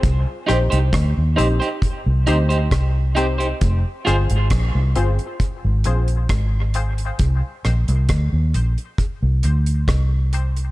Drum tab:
HH |x-xxx-xxx-xxx-xx|x-xxx-xxx-xxx-xx|x-xxx-xxx-xxx-xx|
SD |--r-r-------r---|--r-r-------r---|--r-r-------r---|
BD |o---o---o---o---|o---o---o---o---|o---o---o---o---|